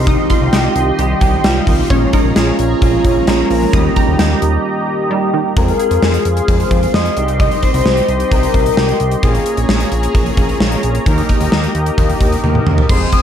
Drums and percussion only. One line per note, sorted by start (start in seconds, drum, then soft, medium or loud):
0.07 kick loud
0.07 closed hi-hat medium
0.30 kick medium
0.30 closed hi-hat medium
0.53 snare loud
0.53 closed hi-hat medium
0.76 closed hi-hat medium
0.99 closed hi-hat medium
1.21 kick medium
1.21 closed hi-hat medium
1.44 snare loud
1.44 closed hi-hat medium
1.67 kick loud
1.67 open hi-hat medium
1.90 kick loud
1.90 closed hi-hat medium
2.13 kick medium
2.13 closed hi-hat medium
2.36 snare loud
2.36 closed hi-hat medium
2.59 closed hi-hat medium
2.82 kick loud
2.82 closed hi-hat medium
3.04 kick medium
3.04 closed hi-hat medium
3.27 snare loud
3.27 closed hi-hat medium
3.50 open hi-hat medium
3.73 kick loud
3.73 closed hi-hat medium
3.96 kick medium
3.96 closed hi-hat medium
4.19 snare loud
4.19 closed hi-hat medium
4.42 closed hi-hat medium
5.57 kick loud
5.57 closed hi-hat medium
5.68 closed hi-hat soft
5.79 closed hi-hat medium
5.91 closed hi-hat medium
6.02 snare loud
6.14 closed hi-hat medium
6.25 closed hi-hat medium
6.37 closed hi-hat medium
6.48 kick loud
6.48 closed hi-hat medium
6.60 closed hi-hat medium
6.71 kick medium
6.71 closed hi-hat medium
6.83 closed hi-hat medium
6.94 snare loud
7.05 closed hi-hat medium
7.17 closed hi-hat medium
7.28 closed hi-hat medium
7.40 kick loud
7.40 closed hi-hat medium
7.51 closed hi-hat soft
7.63 kick medium
7.63 closed hi-hat medium
7.74 closed hi-hat medium
7.86 snare loud
7.97 closed hi-hat medium
8.08 closed hi-hat medium
8.20 closed hi-hat medium
8.31 kick loud
8.31 closed hi-hat medium
8.43 closed hi-hat medium
8.54 kick medium
8.54 closed hi-hat medium
8.66 closed hi-hat medium
8.77 snare loud
8.89 closed hi-hat medium
9.00 closed hi-hat medium
9.11 closed hi-hat medium
9.23 kick loud
9.23 closed hi-hat medium
9.35 closed hi-hat soft
9.46 closed hi-hat medium
9.57 closed hi-hat medium
9.69 snare loud
9.80 closed hi-hat medium
9.92 closed hi-hat medium
10.03 closed hi-hat medium
10.15 kick loud
10.15 closed hi-hat medium
10.26 closed hi-hat medium
10.37 kick loud
10.37 closed hi-hat medium
10.49 closed hi-hat medium
10.60 snare loud
10.72 closed hi-hat medium
10.83 closed hi-hat medium
10.95 closed hi-hat medium
11.06 kick loud
11.06 closed hi-hat medium
11.18 closed hi-hat medium
11.29 kick medium
11.29 closed hi-hat medium
11.41 closed hi-hat medium
11.52 snare loud
11.63 closed hi-hat medium
11.75 closed hi-hat medium
11.86 closed hi-hat medium
11.98 kick loud
11.98 closed hi-hat medium
12.10 closed hi-hat medium
12.21 kick medium
12.21 closed hi-hat medium
12.32 closed hi-hat medium
12.44 high tom medium
12.55 mid tom medium
12.67 mid tom medium
12.78 floor tom loud
12.89 kick loud
12.89 crash loud
13.12 kick medium
13.12 closed hi-hat medium